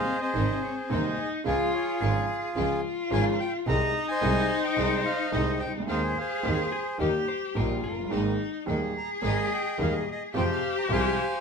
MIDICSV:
0, 0, Header, 1, 7, 480
1, 0, Start_track
1, 0, Key_signature, -4, "major"
1, 0, Tempo, 555556
1, 1263, Time_signature, 4, 2, 24, 8
1, 9853, End_track
2, 0, Start_track
2, 0, Title_t, "Bandoneon"
2, 0, Program_c, 0, 23
2, 0, Note_on_c, 0, 68, 57
2, 0, Note_on_c, 0, 72, 59
2, 0, Note_on_c, 0, 75, 56
2, 0, Note_on_c, 0, 77, 85
2, 146, Note_off_c, 0, 77, 0
2, 165, Note_off_c, 0, 75, 0
2, 175, Note_off_c, 0, 68, 0
2, 178, Note_on_c, 0, 75, 77
2, 179, Note_off_c, 0, 72, 0
2, 188, Note_on_c, 0, 68, 59
2, 192, Note_on_c, 0, 72, 50
2, 514, Note_off_c, 0, 75, 0
2, 546, Note_on_c, 0, 73, 59
2, 653, Note_off_c, 0, 73, 0
2, 771, Note_off_c, 0, 72, 0
2, 784, Note_on_c, 0, 72, 65
2, 1026, Note_on_c, 0, 75, 66
2, 1031, Note_off_c, 0, 72, 0
2, 1112, Note_off_c, 0, 68, 0
2, 1134, Note_off_c, 0, 75, 0
2, 1262, Note_on_c, 0, 73, 79
2, 1272, Note_on_c, 0, 65, 52
2, 1277, Note_on_c, 0, 68, 52
2, 1370, Note_off_c, 0, 73, 0
2, 1498, Note_off_c, 0, 68, 0
2, 1504, Note_on_c, 0, 73, 71
2, 1505, Note_off_c, 0, 65, 0
2, 1511, Note_on_c, 0, 68, 49
2, 1518, Note_on_c, 0, 65, 47
2, 1947, Note_off_c, 0, 73, 0
2, 2426, Note_off_c, 0, 68, 0
2, 2429, Note_off_c, 0, 65, 0
2, 2703, Note_on_c, 0, 80, 86
2, 2809, Note_off_c, 0, 80, 0
2, 2939, Note_on_c, 0, 79, 79
2, 3045, Note_off_c, 0, 79, 0
2, 3181, Note_on_c, 0, 82, 88
2, 3196, Note_on_c, 0, 75, 75
2, 3509, Note_off_c, 0, 82, 0
2, 3529, Note_on_c, 0, 80, 90
2, 3536, Note_off_c, 0, 75, 0
2, 3549, Note_on_c, 0, 75, 60
2, 3553, Note_on_c, 0, 72, 61
2, 3972, Note_off_c, 0, 80, 0
2, 4008, Note_on_c, 0, 79, 72
2, 4018, Note_off_c, 0, 72, 0
2, 4020, Note_off_c, 0, 75, 0
2, 4030, Note_on_c, 0, 72, 58
2, 4033, Note_on_c, 0, 75, 57
2, 4341, Note_off_c, 0, 79, 0
2, 4369, Note_on_c, 0, 77, 77
2, 4585, Note_off_c, 0, 75, 0
2, 4590, Note_off_c, 0, 77, 0
2, 4598, Note_on_c, 0, 75, 72
2, 4836, Note_on_c, 0, 79, 65
2, 4849, Note_off_c, 0, 75, 0
2, 4943, Note_off_c, 0, 72, 0
2, 4946, Note_off_c, 0, 79, 0
2, 5087, Note_on_c, 0, 77, 70
2, 5101, Note_on_c, 0, 68, 52
2, 5104, Note_on_c, 0, 72, 48
2, 5195, Note_off_c, 0, 77, 0
2, 5340, Note_on_c, 0, 77, 64
2, 5342, Note_off_c, 0, 68, 0
2, 5343, Note_off_c, 0, 72, 0
2, 5355, Note_on_c, 0, 68, 50
2, 5356, Note_on_c, 0, 72, 51
2, 5782, Note_off_c, 0, 77, 0
2, 6030, Note_off_c, 0, 68, 0
2, 6031, Note_off_c, 0, 72, 0
2, 7755, Note_on_c, 0, 82, 73
2, 7861, Note_off_c, 0, 82, 0
2, 7995, Note_on_c, 0, 80, 85
2, 8001, Note_on_c, 0, 75, 63
2, 8237, Note_off_c, 0, 80, 0
2, 8241, Note_on_c, 0, 79, 76
2, 8457, Note_off_c, 0, 79, 0
2, 8488, Note_on_c, 0, 77, 66
2, 8591, Note_off_c, 0, 77, 0
2, 8726, Note_off_c, 0, 75, 0
2, 8739, Note_on_c, 0, 75, 69
2, 8839, Note_off_c, 0, 75, 0
2, 8958, Note_on_c, 0, 72, 66
2, 8964, Note_on_c, 0, 79, 84
2, 9014, Note_off_c, 0, 79, 0
2, 9090, Note_on_c, 0, 77, 77
2, 9301, Note_off_c, 0, 77, 0
2, 9318, Note_on_c, 0, 82, 72
2, 9369, Note_off_c, 0, 82, 0
2, 9426, Note_off_c, 0, 72, 0
2, 9439, Note_on_c, 0, 72, 60
2, 9440, Note_on_c, 0, 77, 59
2, 9441, Note_on_c, 0, 80, 77
2, 9853, Note_off_c, 0, 72, 0
2, 9853, Note_off_c, 0, 77, 0
2, 9853, Note_off_c, 0, 80, 0
2, 9853, End_track
3, 0, Start_track
3, 0, Title_t, "Hollow-body jazz guitar"
3, 0, Program_c, 1, 26
3, 5809, Note_on_c, 1, 68, 75
3, 6056, Note_off_c, 1, 68, 0
3, 6059, Note_on_c, 1, 67, 68
3, 6292, Note_on_c, 1, 72, 72
3, 6304, Note_off_c, 1, 67, 0
3, 6532, Note_off_c, 1, 72, 0
3, 6535, Note_on_c, 1, 70, 77
3, 6761, Note_off_c, 1, 70, 0
3, 6772, Note_on_c, 1, 70, 68
3, 7342, Note_off_c, 1, 70, 0
3, 7342, Note_on_c, 1, 68, 68
3, 7585, Note_off_c, 1, 68, 0
3, 9853, End_track
4, 0, Start_track
4, 0, Title_t, "Cello"
4, 0, Program_c, 2, 42
4, 0, Note_on_c, 2, 60, 84
4, 780, Note_on_c, 2, 63, 83
4, 793, Note_off_c, 2, 60, 0
4, 1259, Note_off_c, 2, 63, 0
4, 1264, Note_on_c, 2, 65, 89
4, 1735, Note_on_c, 2, 68, 77
4, 1748, Note_off_c, 2, 65, 0
4, 2208, Note_off_c, 2, 68, 0
4, 2213, Note_on_c, 2, 65, 83
4, 3169, Note_on_c, 2, 63, 97
4, 3182, Note_off_c, 2, 65, 0
4, 5081, Note_off_c, 2, 63, 0
4, 5086, Note_on_c, 2, 68, 85
4, 6016, Note_off_c, 2, 68, 0
4, 6049, Note_on_c, 2, 67, 80
4, 6535, Note_on_c, 2, 65, 70
4, 6548, Note_off_c, 2, 67, 0
4, 7016, Note_on_c, 2, 63, 83
4, 7029, Note_off_c, 2, 65, 0
4, 7500, Note_off_c, 2, 63, 0
4, 7504, Note_on_c, 2, 68, 86
4, 8911, Note_off_c, 2, 68, 0
4, 8940, Note_on_c, 2, 67, 97
4, 9853, Note_off_c, 2, 67, 0
4, 9853, End_track
5, 0, Start_track
5, 0, Title_t, "String section"
5, 0, Program_c, 3, 48
5, 300, Note_on_c, 3, 56, 63
5, 302, Note_on_c, 3, 60, 60
5, 304, Note_on_c, 3, 63, 71
5, 502, Note_off_c, 3, 56, 0
5, 503, Note_off_c, 3, 60, 0
5, 504, Note_off_c, 3, 63, 0
5, 782, Note_on_c, 3, 56, 64
5, 782, Note_on_c, 3, 60, 56
5, 783, Note_on_c, 3, 63, 74
5, 984, Note_off_c, 3, 56, 0
5, 984, Note_off_c, 3, 60, 0
5, 985, Note_off_c, 3, 63, 0
5, 1261, Note_on_c, 3, 56, 72
5, 1263, Note_on_c, 3, 61, 65
5, 1265, Note_on_c, 3, 65, 71
5, 1464, Note_off_c, 3, 56, 0
5, 1465, Note_off_c, 3, 61, 0
5, 1466, Note_off_c, 3, 65, 0
5, 1743, Note_on_c, 3, 56, 64
5, 1745, Note_on_c, 3, 65, 71
5, 1746, Note_on_c, 3, 61, 60
5, 1942, Note_off_c, 3, 56, 0
5, 1943, Note_off_c, 3, 61, 0
5, 1943, Note_off_c, 3, 65, 0
5, 2215, Note_on_c, 3, 56, 69
5, 2217, Note_on_c, 3, 61, 63
5, 2220, Note_on_c, 3, 65, 74
5, 2417, Note_off_c, 3, 56, 0
5, 2418, Note_off_c, 3, 61, 0
5, 2419, Note_off_c, 3, 65, 0
5, 2692, Note_on_c, 3, 56, 68
5, 2693, Note_on_c, 3, 61, 63
5, 2695, Note_on_c, 3, 65, 79
5, 2893, Note_off_c, 3, 56, 0
5, 2894, Note_off_c, 3, 61, 0
5, 2895, Note_off_c, 3, 65, 0
5, 3167, Note_on_c, 3, 56, 70
5, 3169, Note_on_c, 3, 60, 68
5, 3173, Note_on_c, 3, 63, 78
5, 3369, Note_off_c, 3, 56, 0
5, 3370, Note_off_c, 3, 60, 0
5, 3372, Note_off_c, 3, 63, 0
5, 3641, Note_on_c, 3, 56, 71
5, 3645, Note_on_c, 3, 60, 67
5, 3646, Note_on_c, 3, 63, 78
5, 3844, Note_off_c, 3, 56, 0
5, 3846, Note_off_c, 3, 60, 0
5, 3846, Note_off_c, 3, 63, 0
5, 4117, Note_on_c, 3, 56, 69
5, 4119, Note_on_c, 3, 60, 66
5, 4122, Note_on_c, 3, 63, 79
5, 4322, Note_off_c, 3, 56, 0
5, 4323, Note_off_c, 3, 60, 0
5, 4324, Note_off_c, 3, 63, 0
5, 4598, Note_on_c, 3, 56, 64
5, 4599, Note_on_c, 3, 60, 61
5, 4599, Note_on_c, 3, 63, 80
5, 4803, Note_off_c, 3, 56, 0
5, 4803, Note_off_c, 3, 60, 0
5, 4804, Note_off_c, 3, 63, 0
5, 5080, Note_on_c, 3, 56, 73
5, 5080, Note_on_c, 3, 60, 65
5, 5084, Note_on_c, 3, 63, 76
5, 5285, Note_off_c, 3, 56, 0
5, 5285, Note_off_c, 3, 60, 0
5, 5286, Note_off_c, 3, 63, 0
5, 5560, Note_on_c, 3, 56, 61
5, 5562, Note_on_c, 3, 60, 64
5, 5562, Note_on_c, 3, 63, 69
5, 5767, Note_off_c, 3, 56, 0
5, 5767, Note_off_c, 3, 60, 0
5, 5768, Note_off_c, 3, 63, 0
5, 6044, Note_on_c, 3, 58, 62
5, 6045, Note_on_c, 3, 55, 60
5, 6048, Note_on_c, 3, 63, 70
5, 6251, Note_off_c, 3, 55, 0
5, 6251, Note_off_c, 3, 58, 0
5, 6252, Note_off_c, 3, 63, 0
5, 6531, Note_on_c, 3, 55, 55
5, 6531, Note_on_c, 3, 58, 55
5, 6533, Note_on_c, 3, 63, 72
5, 6738, Note_off_c, 3, 55, 0
5, 6738, Note_off_c, 3, 58, 0
5, 6739, Note_off_c, 3, 63, 0
5, 7014, Note_on_c, 3, 56, 61
5, 7016, Note_on_c, 3, 58, 58
5, 7017, Note_on_c, 3, 63, 74
5, 7220, Note_off_c, 3, 56, 0
5, 7221, Note_off_c, 3, 58, 0
5, 7222, Note_off_c, 3, 63, 0
5, 7495, Note_on_c, 3, 56, 62
5, 7496, Note_on_c, 3, 58, 55
5, 7498, Note_on_c, 3, 63, 66
5, 7701, Note_off_c, 3, 56, 0
5, 7701, Note_off_c, 3, 58, 0
5, 7702, Note_off_c, 3, 63, 0
5, 7972, Note_on_c, 3, 56, 69
5, 7974, Note_on_c, 3, 58, 65
5, 7975, Note_on_c, 3, 63, 82
5, 8180, Note_off_c, 3, 56, 0
5, 8181, Note_off_c, 3, 58, 0
5, 8182, Note_off_c, 3, 63, 0
5, 8459, Note_on_c, 3, 56, 73
5, 8459, Note_on_c, 3, 58, 62
5, 8460, Note_on_c, 3, 63, 66
5, 8663, Note_off_c, 3, 56, 0
5, 8663, Note_off_c, 3, 58, 0
5, 8664, Note_off_c, 3, 63, 0
5, 8936, Note_on_c, 3, 56, 77
5, 8939, Note_on_c, 3, 60, 70
5, 8939, Note_on_c, 3, 65, 70
5, 9142, Note_off_c, 3, 56, 0
5, 9143, Note_off_c, 3, 60, 0
5, 9143, Note_off_c, 3, 65, 0
5, 9415, Note_on_c, 3, 56, 68
5, 9418, Note_on_c, 3, 60, 68
5, 9418, Note_on_c, 3, 65, 77
5, 9619, Note_off_c, 3, 56, 0
5, 9621, Note_off_c, 3, 60, 0
5, 9621, Note_off_c, 3, 65, 0
5, 9853, End_track
6, 0, Start_track
6, 0, Title_t, "Grand piano"
6, 0, Program_c, 4, 0
6, 289, Note_on_c, 4, 32, 70
6, 289, Note_on_c, 4, 48, 57
6, 291, Note_on_c, 4, 44, 74
6, 292, Note_on_c, 4, 51, 53
6, 295, Note_on_c, 4, 56, 49
6, 296, Note_on_c, 4, 63, 66
6, 496, Note_off_c, 4, 32, 0
6, 496, Note_off_c, 4, 48, 0
6, 497, Note_off_c, 4, 44, 0
6, 498, Note_off_c, 4, 51, 0
6, 499, Note_off_c, 4, 56, 0
6, 500, Note_off_c, 4, 63, 0
6, 774, Note_on_c, 4, 39, 79
6, 774, Note_on_c, 4, 48, 67
6, 774, Note_on_c, 4, 51, 54
6, 777, Note_on_c, 4, 56, 56
6, 779, Note_on_c, 4, 63, 73
6, 780, Note_on_c, 4, 27, 77
6, 980, Note_off_c, 4, 39, 0
6, 980, Note_off_c, 4, 48, 0
6, 980, Note_off_c, 4, 51, 0
6, 981, Note_off_c, 4, 56, 0
6, 982, Note_off_c, 4, 63, 0
6, 983, Note_off_c, 4, 27, 0
6, 1245, Note_on_c, 4, 49, 77
6, 1249, Note_on_c, 4, 53, 59
6, 1252, Note_on_c, 4, 56, 60
6, 1254, Note_on_c, 4, 65, 72
6, 1255, Note_on_c, 4, 37, 75
6, 1458, Note_off_c, 4, 49, 0
6, 1458, Note_off_c, 4, 53, 0
6, 1459, Note_off_c, 4, 56, 0
6, 1460, Note_off_c, 4, 37, 0
6, 1460, Note_off_c, 4, 65, 0
6, 1735, Note_on_c, 4, 53, 55
6, 1736, Note_on_c, 4, 44, 80
6, 1736, Note_on_c, 4, 49, 65
6, 1739, Note_on_c, 4, 32, 74
6, 1740, Note_on_c, 4, 56, 63
6, 1740, Note_on_c, 4, 65, 73
6, 1938, Note_off_c, 4, 49, 0
6, 1938, Note_off_c, 4, 53, 0
6, 1939, Note_off_c, 4, 44, 0
6, 1940, Note_off_c, 4, 32, 0
6, 1940, Note_off_c, 4, 56, 0
6, 1941, Note_off_c, 4, 65, 0
6, 2211, Note_on_c, 4, 49, 79
6, 2211, Note_on_c, 4, 53, 55
6, 2214, Note_on_c, 4, 56, 55
6, 2216, Note_on_c, 4, 65, 74
6, 2217, Note_on_c, 4, 37, 68
6, 2415, Note_off_c, 4, 53, 0
6, 2416, Note_off_c, 4, 49, 0
6, 2416, Note_off_c, 4, 56, 0
6, 2417, Note_off_c, 4, 65, 0
6, 2418, Note_off_c, 4, 37, 0
6, 2683, Note_on_c, 4, 32, 86
6, 2685, Note_on_c, 4, 44, 85
6, 2685, Note_on_c, 4, 53, 66
6, 2686, Note_on_c, 4, 49, 71
6, 2687, Note_on_c, 4, 56, 62
6, 2689, Note_on_c, 4, 65, 79
6, 2889, Note_off_c, 4, 32, 0
6, 2890, Note_off_c, 4, 44, 0
6, 2890, Note_off_c, 4, 49, 0
6, 2890, Note_off_c, 4, 53, 0
6, 2891, Note_off_c, 4, 56, 0
6, 2892, Note_off_c, 4, 65, 0
6, 3166, Note_on_c, 4, 48, 77
6, 3166, Note_on_c, 4, 60, 66
6, 3167, Note_on_c, 4, 51, 67
6, 3170, Note_on_c, 4, 68, 85
6, 3171, Note_on_c, 4, 56, 63
6, 3172, Note_on_c, 4, 36, 76
6, 3369, Note_off_c, 4, 48, 0
6, 3369, Note_off_c, 4, 51, 0
6, 3369, Note_off_c, 4, 60, 0
6, 3370, Note_off_c, 4, 68, 0
6, 3371, Note_off_c, 4, 56, 0
6, 3372, Note_off_c, 4, 36, 0
6, 3638, Note_on_c, 4, 51, 64
6, 3640, Note_on_c, 4, 56, 59
6, 3642, Note_on_c, 4, 48, 81
6, 3642, Note_on_c, 4, 60, 62
6, 3643, Note_on_c, 4, 36, 86
6, 3644, Note_on_c, 4, 68, 82
6, 3842, Note_off_c, 4, 51, 0
6, 3844, Note_off_c, 4, 48, 0
6, 3844, Note_off_c, 4, 56, 0
6, 3844, Note_off_c, 4, 60, 0
6, 3845, Note_off_c, 4, 36, 0
6, 3845, Note_off_c, 4, 68, 0
6, 4117, Note_on_c, 4, 56, 66
6, 4117, Note_on_c, 4, 60, 59
6, 4118, Note_on_c, 4, 68, 76
6, 4119, Note_on_c, 4, 36, 78
6, 4120, Note_on_c, 4, 51, 64
6, 4121, Note_on_c, 4, 48, 71
6, 4322, Note_off_c, 4, 56, 0
6, 4322, Note_off_c, 4, 60, 0
6, 4323, Note_off_c, 4, 36, 0
6, 4323, Note_off_c, 4, 68, 0
6, 4324, Note_off_c, 4, 48, 0
6, 4324, Note_off_c, 4, 51, 0
6, 4593, Note_on_c, 4, 51, 67
6, 4595, Note_on_c, 4, 36, 78
6, 4595, Note_on_c, 4, 56, 67
6, 4597, Note_on_c, 4, 68, 78
6, 4598, Note_on_c, 4, 48, 76
6, 4598, Note_on_c, 4, 60, 65
6, 4800, Note_off_c, 4, 51, 0
6, 4801, Note_off_c, 4, 56, 0
6, 4802, Note_off_c, 4, 36, 0
6, 4803, Note_off_c, 4, 48, 0
6, 4803, Note_off_c, 4, 60, 0
6, 4803, Note_off_c, 4, 68, 0
6, 4899, Note_on_c, 4, 36, 42
6, 4962, Note_off_c, 4, 36, 0
6, 4962, Note_on_c, 4, 37, 51
6, 5008, Note_on_c, 4, 38, 65
6, 5024, Note_off_c, 4, 37, 0
6, 5072, Note_on_c, 4, 51, 75
6, 5072, Note_on_c, 4, 56, 57
6, 5073, Note_on_c, 4, 39, 74
6, 5076, Note_on_c, 4, 68, 73
6, 5077, Note_off_c, 4, 38, 0
6, 5077, Note_on_c, 4, 60, 59
6, 5281, Note_off_c, 4, 39, 0
6, 5281, Note_off_c, 4, 56, 0
6, 5282, Note_off_c, 4, 68, 0
6, 5283, Note_off_c, 4, 60, 0
6, 5284, Note_off_c, 4, 51, 0
6, 5555, Note_on_c, 4, 51, 78
6, 5556, Note_on_c, 4, 39, 71
6, 5556, Note_on_c, 4, 56, 59
6, 5559, Note_on_c, 4, 60, 60
6, 5561, Note_on_c, 4, 68, 68
6, 5764, Note_off_c, 4, 51, 0
6, 5764, Note_off_c, 4, 56, 0
6, 5765, Note_off_c, 4, 39, 0
6, 5766, Note_off_c, 4, 60, 0
6, 5767, Note_off_c, 4, 68, 0
6, 6030, Note_on_c, 4, 51, 73
6, 6033, Note_on_c, 4, 58, 53
6, 6036, Note_on_c, 4, 39, 72
6, 6036, Note_on_c, 4, 55, 55
6, 6037, Note_on_c, 4, 67, 73
6, 6245, Note_off_c, 4, 58, 0
6, 6246, Note_off_c, 4, 39, 0
6, 6246, Note_off_c, 4, 51, 0
6, 6247, Note_off_c, 4, 55, 0
6, 6247, Note_off_c, 4, 67, 0
6, 6520, Note_on_c, 4, 55, 54
6, 6521, Note_on_c, 4, 51, 57
6, 6522, Note_on_c, 4, 67, 70
6, 6523, Note_on_c, 4, 46, 71
6, 6524, Note_on_c, 4, 34, 73
6, 6526, Note_on_c, 4, 58, 59
6, 6733, Note_off_c, 4, 51, 0
6, 6733, Note_off_c, 4, 55, 0
6, 6734, Note_off_c, 4, 46, 0
6, 6734, Note_off_c, 4, 67, 0
6, 6735, Note_off_c, 4, 34, 0
6, 6736, Note_off_c, 4, 58, 0
6, 6824, Note_on_c, 4, 29, 35
6, 6892, Note_off_c, 4, 29, 0
6, 6892, Note_on_c, 4, 30, 50
6, 6948, Note_on_c, 4, 31, 63
6, 6956, Note_off_c, 4, 30, 0
6, 6997, Note_on_c, 4, 51, 71
6, 7003, Note_on_c, 4, 68, 71
6, 7004, Note_on_c, 4, 32, 72
6, 7004, Note_on_c, 4, 44, 83
6, 7004, Note_on_c, 4, 56, 57
6, 7006, Note_on_c, 4, 58, 60
6, 7015, Note_off_c, 4, 31, 0
6, 7212, Note_off_c, 4, 51, 0
6, 7214, Note_off_c, 4, 68, 0
6, 7215, Note_off_c, 4, 32, 0
6, 7215, Note_off_c, 4, 44, 0
6, 7215, Note_off_c, 4, 56, 0
6, 7216, Note_off_c, 4, 58, 0
6, 7481, Note_on_c, 4, 51, 65
6, 7483, Note_on_c, 4, 39, 80
6, 7485, Note_on_c, 4, 56, 54
6, 7485, Note_on_c, 4, 58, 58
6, 7486, Note_on_c, 4, 68, 73
6, 7488, Note_on_c, 4, 27, 73
6, 7694, Note_off_c, 4, 51, 0
6, 7695, Note_off_c, 4, 39, 0
6, 7696, Note_off_c, 4, 56, 0
6, 7696, Note_off_c, 4, 58, 0
6, 7696, Note_off_c, 4, 68, 0
6, 7697, Note_off_c, 4, 27, 0
6, 7961, Note_on_c, 4, 51, 66
6, 7965, Note_on_c, 4, 56, 62
6, 7966, Note_on_c, 4, 58, 59
6, 7967, Note_on_c, 4, 32, 81
6, 7967, Note_on_c, 4, 44, 77
6, 7971, Note_on_c, 4, 68, 72
6, 8175, Note_off_c, 4, 51, 0
6, 8177, Note_off_c, 4, 56, 0
6, 8177, Note_off_c, 4, 58, 0
6, 8178, Note_off_c, 4, 32, 0
6, 8178, Note_off_c, 4, 44, 0
6, 8180, Note_off_c, 4, 68, 0
6, 8449, Note_on_c, 4, 58, 60
6, 8450, Note_on_c, 4, 51, 68
6, 8450, Note_on_c, 4, 56, 61
6, 8451, Note_on_c, 4, 27, 78
6, 8451, Note_on_c, 4, 39, 77
6, 8455, Note_on_c, 4, 68, 72
6, 8658, Note_off_c, 4, 58, 0
6, 8659, Note_off_c, 4, 27, 0
6, 8659, Note_off_c, 4, 39, 0
6, 8659, Note_off_c, 4, 51, 0
6, 8659, Note_off_c, 4, 56, 0
6, 8662, Note_off_c, 4, 68, 0
6, 8932, Note_on_c, 4, 48, 70
6, 8932, Note_on_c, 4, 53, 83
6, 8933, Note_on_c, 4, 56, 59
6, 8936, Note_on_c, 4, 65, 69
6, 8938, Note_on_c, 4, 41, 73
6, 9140, Note_off_c, 4, 48, 0
6, 9140, Note_off_c, 4, 56, 0
6, 9142, Note_off_c, 4, 41, 0
6, 9142, Note_off_c, 4, 53, 0
6, 9142, Note_off_c, 4, 65, 0
6, 9405, Note_on_c, 4, 56, 64
6, 9406, Note_on_c, 4, 36, 76
6, 9406, Note_on_c, 4, 53, 64
6, 9407, Note_on_c, 4, 48, 81
6, 9409, Note_on_c, 4, 65, 84
6, 9614, Note_off_c, 4, 56, 0
6, 9615, Note_off_c, 4, 36, 0
6, 9615, Note_off_c, 4, 53, 0
6, 9616, Note_off_c, 4, 48, 0
6, 9616, Note_off_c, 4, 65, 0
6, 9853, End_track
7, 0, Start_track
7, 0, Title_t, "Double bass"
7, 0, Program_c, 5, 43
7, 302, Note_on_c, 5, 32, 80
7, 503, Note_off_c, 5, 32, 0
7, 782, Note_on_c, 5, 39, 76
7, 984, Note_off_c, 5, 39, 0
7, 1260, Note_on_c, 5, 37, 81
7, 1463, Note_off_c, 5, 37, 0
7, 1735, Note_on_c, 5, 32, 83
7, 1938, Note_off_c, 5, 32, 0
7, 2210, Note_on_c, 5, 37, 78
7, 2414, Note_off_c, 5, 37, 0
7, 2686, Note_on_c, 5, 32, 82
7, 2890, Note_off_c, 5, 32, 0
7, 3165, Note_on_c, 5, 36, 88
7, 3368, Note_off_c, 5, 36, 0
7, 3646, Note_on_c, 5, 36, 86
7, 3846, Note_off_c, 5, 36, 0
7, 4120, Note_on_c, 5, 36, 77
7, 4323, Note_off_c, 5, 36, 0
7, 4600, Note_on_c, 5, 36, 80
7, 4804, Note_off_c, 5, 36, 0
7, 4845, Note_on_c, 5, 37, 50
7, 5077, Note_off_c, 5, 37, 0
7, 5082, Note_on_c, 5, 39, 83
7, 5286, Note_off_c, 5, 39, 0
7, 5565, Note_on_c, 5, 39, 81
7, 5769, Note_off_c, 5, 39, 0
7, 6047, Note_on_c, 5, 39, 74
7, 6252, Note_off_c, 5, 39, 0
7, 6528, Note_on_c, 5, 34, 78
7, 6736, Note_off_c, 5, 34, 0
7, 6774, Note_on_c, 5, 30, 42
7, 7009, Note_off_c, 5, 30, 0
7, 7014, Note_on_c, 5, 32, 80
7, 7220, Note_off_c, 5, 32, 0
7, 7496, Note_on_c, 5, 39, 82
7, 7702, Note_off_c, 5, 39, 0
7, 7972, Note_on_c, 5, 32, 73
7, 8180, Note_off_c, 5, 32, 0
7, 8460, Note_on_c, 5, 39, 82
7, 8664, Note_off_c, 5, 39, 0
7, 8941, Note_on_c, 5, 41, 87
7, 9144, Note_off_c, 5, 41, 0
7, 9413, Note_on_c, 5, 36, 82
7, 9618, Note_off_c, 5, 36, 0
7, 9853, End_track
0, 0, End_of_file